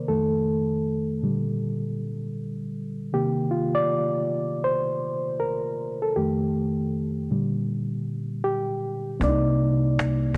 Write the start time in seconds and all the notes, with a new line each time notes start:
Already playing: C3 D#3 A#3 A#4 C5 D5
0.08 F2 D#3 A3 A4
1.22 A#2 D3 G3
3.13 C3 D#3 A#3 G4
3.51 F4
3.75 D5
4.64 C5
5.40 A#4
6.02 A4
6.16 F2 D#3 A3 G4
7.31 A#2 D3 G3
8.44 G4
9.20 C2 C3 A#3 D4 D5, cajon bass
9.29 D#4
9.47 cajon slap
9.58 cajon slap
9.99 cajon slap